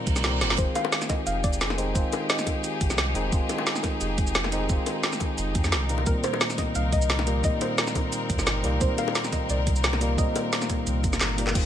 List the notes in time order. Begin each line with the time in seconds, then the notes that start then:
Already playing: A#2 D#3 G3 A#3 C4 D#4 A#4 D#5, reverse cymbal
0.07 C2, kick, closed hi-hat, shaker
0.16 snare, shaker
0.23 A#2 D#3 G3 C4, snare, closed hi-hat, shaker
0.41 G1, snare, closed hi-hat, shaker
0.50 snare
0.57 F1 D#3 G#3 C4 D#4 F4 G4 G#4 C5, kick, closed hi-hat, shaker
0.75 F5, closed hi-hat, high bongo, shaker
0.85 high bongo
0.92 snare, closed hi-hat, shaker
1.02 snare, shaker
1.09 D#5, kick, snare, closed hi-hat, high bongo, shaker
1.26 F1 F5, closed hi-hat, shaker
1.44 D5, kick, closed hi-hat, shaker
1.53 shaker
1.61 snare, closed hi-hat, shaker
1.70 snare, high bongo
1.77 D#3 G#3 C4 D#4 C5, closed hi-hat, shaker
1.94 F1 D#3 G#3 C4 F4 C5, kick, closed hi-hat, shaker
2.12 closed hi-hat, high bongo, shaker
2.29 D#5, snare, closed hi-hat, shaker
2.39 snare, shaker
2.46 kick, closed hi-hat, high bongo, shaker
2.64 closed hi-hat, shaker
2.81 G#1, kick, closed hi-hat, shaker
2.90 C2, snare, shaker
2.98 snare, closed hi-hat, shaker
3.14 F1 D#3 G#3 C4 D#4, closed hi-hat, shaker
3.31 F1 D#3 G#3 C4 F4, kick, closed hi-hat, shaker
3.49 closed hi-hat, high bongo, shaker
3.58 high bongo
3.67 snare, closed hi-hat, shaker
3.76 snare, shaker
3.83 kick, snare, closed hi-hat, high bongo, shaker
4.01 F1, closed hi-hat, shaker
4.18 kick, closed hi-hat, shaker
4.27 shaker
4.35 snare, closed hi-hat, shaker
4.44 snare, high bongo
4.52 D#3 G#3 C4 D#4, closed hi-hat, shaker
4.68 F1 D#3 G#3 C4 F4, kick, closed hi-hat, shaker
4.86 closed hi-hat, high bongo, shaker
5.03 snare, closed hi-hat, shaker
5.13 snare, shaker
5.20 kick, closed hi-hat, high bongo, shaker
5.38 F1, closed hi-hat, shaker
5.55 F2, kick, closed hi-hat, shaker
5.64 snare, shaker
5.72 C2, snare, closed hi-hat, shaker
5.89 A#2 D#3 G3 A#3 C4 A#4, closed hi-hat, shaker
5.98 high bongo
6.05 C2 A#2 D#3 G3 C4 A#4, kick, closed hi-hat, shaker
6.24 C5, closed hi-hat, high bongo, shaker
6.33 high bongo
6.41 snare, closed hi-hat, shaker
6.50 snare, shaker
6.58 D#5, kick, snare, closed hi-hat, high bongo, shaker
6.75 C2 F5, closed hi-hat, shaker
6.92 D#5, kick, closed hi-hat, shaker
7.02 shaker
7.10 snare, closed hi-hat, shaker
7.19 snare, high bongo
7.26 A#2 D#3 G3 A#3, closed hi-hat, shaker
7.42 C2 A#2 D#3 G3 C4 D#5, kick, closed hi-hat, shaker
7.61 C5, closed hi-hat, high bongo, shaker
7.78 snare, closed hi-hat, shaker
7.87 snare, shaker
7.95 kick, closed hi-hat, high bongo, shaker
8.12 closed hi-hat, shaker
8.30 D#2, kick, closed hi-hat, shaker
8.39 G1, snare, shaker
8.47 snare, closed hi-hat, shaker
8.63 C2 A#2 D#3 G3 A#3, closed hi-hat, shaker
8.79 C2 A#2 D#3 G3 C4 C5, kick, closed hi-hat, shaker
8.98 F5, closed hi-hat, high bongo, shaker
9.08 high bongo
9.15 snare, closed hi-hat, shaker
9.24 snare, shaker
9.32 D#5, kick, snare, closed hi-hat, high bongo, shaker
9.50 C2 D5, closed hi-hat, shaker
9.67 kick, closed hi-hat, shaker
9.76 shaker
9.84 snare, closed hi-hat, shaker
9.93 snare, high bongo
10.00 A#2 D#3 G3 A#3, closed hi-hat, shaker
10.16 C2 A#2 D#3 G3 C4 D#5, kick, closed hi-hat, shaker
10.36 closed hi-hat, high bongo, shaker
10.53 snare, closed hi-hat, shaker
10.62 snare, shaker
10.70 kick, closed hi-hat, high bongo, shaker
10.87 C2, closed hi-hat, shaker
11.04 G1, kick, closed hi-hat, shaker
11.13 snare, shaker
11.21 G1, snare, clap, closed hi-hat, shaker
11.37 A#2 D#3 G3 A#3, closed hi-hat, shaker
11.47 clap, high bongo
11.54 F1 D#3 G#3 C4 D#4 F4 G4 G#4, kick, closed hi-hat, crash, shaker